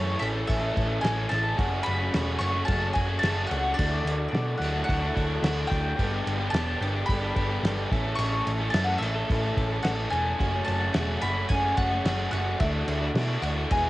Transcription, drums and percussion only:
0.22 crash
0.49 kick, crash
0.77 kick, crash
1.04 snare, crash
1.31 snare, crash
1.59 kick, crash
1.86 crash
2.14 snare, crash
2.41 crash
2.68 kick, crash
2.95 kick, crash
3.23 snare, crash
3.51 crash
3.79 kick, crash
4.07 crash
4.35 snare, crash
4.62 crash
4.89 kick, crash
5.17 kick, crash
5.44 snare, crash
5.72 kick, snare, crash
5.99 kick, crash
6.27 crash
6.54 snare, crash
6.82 crash
7.09 kick, crash
7.36 kick, crash
7.65 snare, crash
7.92 kick, snare, crash
8.19 crash
8.47 crash
8.74 snare, crash
9.02 crash
9.30 kick, crash
9.57 kick, crash
9.84 snare, crash
10.12 crash
10.40 kick, crash
10.68 crash
10.94 snare, crash
11.21 crash
11.50 kick, crash
11.78 kick, crash
12.05 snare, crash
12.33 crash
12.60 kick, crash
12.88 crash
13.15 snare, crash
13.43 crash
13.71 kick, crash

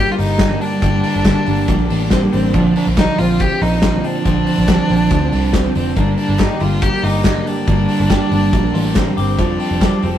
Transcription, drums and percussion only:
0.19 open hi-hat
0.39 kick, snare, clap, hi-hat pedal, ride
0.61 open hi-hat
0.82 kick, hi-hat pedal, ride
1.03 open hi-hat
1.24 kick, snare, clap, hi-hat pedal, ride
1.46 open hi-hat
1.68 kick, hi-hat pedal, ride
1.90 open hi-hat
2.10 kick, snare, clap, hi-hat pedal, ride
2.33 open hi-hat
2.54 kick, hi-hat pedal, ride
2.76 open hi-hat
2.97 kick, snare, clap, hi-hat pedal, ride
3.18 open hi-hat
3.40 kick, hi-hat pedal, ride
3.62 open hi-hat
3.82 kick, snare, clap, hi-hat pedal, ride
4.04 open hi-hat
4.25 kick, hi-hat pedal, ride
4.47 open hi-hat
4.68 kick, snare, clap, hi-hat pedal, ride
4.89 open hi-hat
5.10 kick, hi-hat pedal, ride
5.32 open hi-hat
5.53 kick, snare, clap, hi-hat pedal, ride
5.75 open hi-hat
5.96 kick, hi-hat pedal, ride
6.18 open hi-hat
6.39 kick, snare, clap, hi-hat pedal, ride
6.60 open hi-hat
6.82 kick, hi-hat pedal, ride
7.04 open hi-hat
7.24 kick, snare, clap, hi-hat pedal, ride
7.47 open hi-hat
7.67 kick, hi-hat pedal, ride
7.88 open hi-hat
8.10 kick, snare, clap, hi-hat pedal, ride
8.31 open hi-hat
8.53 kick, hi-hat pedal, ride
8.75 open hi-hat
8.95 kick, snare, clap, hi-hat pedal, ride
9.18 open hi-hat
9.39 kick, hi-hat pedal, ride
9.60 open hi-hat
9.81 kick, snare, clap, hi-hat pedal, ride
10.02 open hi-hat

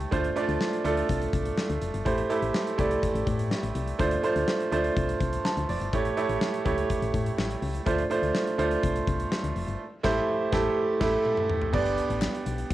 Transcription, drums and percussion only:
0.00 closed hi-hat
0.12 kick, closed hi-hat
0.24 closed hi-hat
0.36 closed hi-hat
0.49 closed hi-hat
0.61 snare
0.73 closed hi-hat
0.85 closed hi-hat
0.97 closed hi-hat
1.09 kick, closed hi-hat
1.22 closed hi-hat
1.33 kick, closed hi-hat
1.45 closed hi-hat
1.58 snare
1.70 closed hi-hat
1.82 closed hi-hat
1.94 closed hi-hat
2.06 kick, closed hi-hat
2.18 closed hi-hat
2.30 closed hi-hat
2.42 closed hi-hat
2.54 snare
2.67 closed hi-hat
2.79 kick, closed hi-hat
2.91 closed hi-hat
3.03 kick, closed hi-hat
3.15 closed hi-hat
3.27 kick, closed hi-hat
3.39 closed hi-hat
3.51 snare
3.63 closed hi-hat
3.75 closed hi-hat
3.87 closed hi-hat
3.99 kick, closed hi-hat
4.11 closed hi-hat
4.24 closed hi-hat
4.36 closed hi-hat
4.48 snare
4.60 closed hi-hat
4.72 closed hi-hat
4.84 closed hi-hat
4.97 kick, closed hi-hat
5.09 closed hi-hat
5.21 kick, closed hi-hat
5.33 closed hi-hat
5.45 snare
5.57 closed hi-hat
5.69 open hi-hat
5.81 closed hi-hat
5.93 kick, closed hi-hat
6.05 closed hi-hat
6.17 closed hi-hat
6.29 closed hi-hat
6.41 snare
6.54 closed hi-hat
6.66 kick, closed hi-hat
6.78 closed hi-hat
6.90 kick, closed hi-hat
7.02 closed hi-hat
7.14 kick, closed hi-hat
7.26 closed hi-hat
7.38 snare
7.51 closed hi-hat
7.62 open hi-hat
7.75 closed hi-hat
7.86 kick, closed hi-hat
7.98 closed hi-hat
8.11 closed hi-hat
8.23 closed hi-hat
8.35 snare
8.47 closed hi-hat
8.59 closed hi-hat
8.71 closed hi-hat
8.83 kick, closed hi-hat
8.96 closed hi-hat
9.07 kick, closed hi-hat
9.20 closed hi-hat
9.32 snare
9.44 closed hi-hat
9.56 open hi-hat
9.68 closed hi-hat
10.04 kick, snare, crash
10.53 kick, snare
11.01 kick, snare, crash
11.25 high tom
11.37 mid tom
11.50 mid tom
11.62 floor tom
11.74 kick, crash
11.86 closed hi-hat
11.98 closed hi-hat
12.10 closed hi-hat
12.22 snare, clap
12.35 closed hi-hat
12.46 closed hi-hat
12.58 closed hi-hat
12.70 kick, closed hi-hat

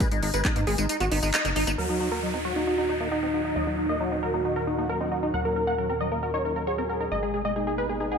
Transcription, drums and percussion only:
0.00 kick, closed hi-hat, tambourine
0.11 closed hi-hat, tambourine
0.23 open hi-hat
0.34 closed hi-hat, tambourine
0.45 kick, clap, closed hi-hat, tambourine
0.56 closed hi-hat, tambourine
0.67 open hi-hat
0.78 closed hi-hat, tambourine
0.89 closed hi-hat, tambourine
1.00 closed hi-hat, tambourine
1.12 open hi-hat
1.23 open hi-hat, tambourine
1.34 clap, closed hi-hat, tambourine
1.45 closed hi-hat, tambourine
1.56 open hi-hat
1.67 closed hi-hat, tambourine

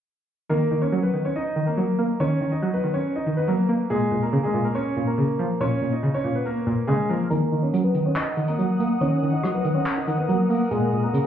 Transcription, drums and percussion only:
7.31 closed hi-hat
7.74 closed hi-hat
7.94 closed hi-hat
8.16 clap, closed hi-hat
8.37 closed hi-hat
8.48 closed hi-hat
8.59 closed hi-hat
8.80 closed hi-hat
9.01 closed hi-hat
9.44 cross-stick, closed hi-hat
9.65 closed hi-hat
9.86 clap, closed hi-hat
10.07 closed hi-hat
10.29 closed hi-hat
10.50 open hi-hat
10.71 closed hi-hat
11.14 closed hi-hat

